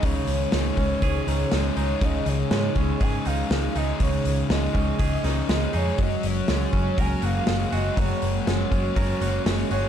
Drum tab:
HH |oooooooo|oooooooo|oooooooo|oooooooo|
SD |--o---o-|--o---o-|--o--oo-|--o---o-|
BD |o--oo---|o--oo---|o--oo---|o--oo---|

HH |oooooooo|
SD |--o---o-|
BD |o--oo---|